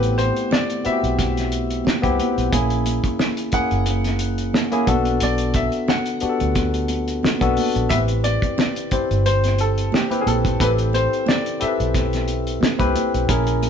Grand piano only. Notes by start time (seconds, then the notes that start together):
Already playing: B4
0.18 C5
0.52 D5
0.86 E5
3.54 F#5
5.23 D5
5.55 E5
5.89 F#5
7.89 E5
8.24 D5
9.26 C5
9.61 A4
9.95 G4
10.21 G#4
10.27 A4
10.61 B4
10.94 C5
11.28 D5
11.62 E5